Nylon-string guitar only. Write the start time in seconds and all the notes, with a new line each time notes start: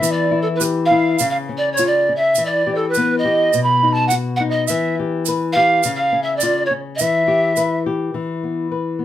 0.02 E3
0.31 E4
0.60 G4
0.91 E4
1.20 C#3
1.49 C#4
1.79 F4
2.09 C#4
2.38 E3
2.67 G4
2.97 B3
3.25 G4
3.54 B2
3.83 D#4
4.11 F#4
4.40 D#4
4.70 E3
4.99 G4
5.28 B4
5.56 G4
5.85 C#3
6.12 C#4
6.43 F4
6.71 C#4
7.01 E3
7.28 G4
7.57 B4
7.86 G4
8.14 E3
8.43 B3
8.71 B4
8.99 B3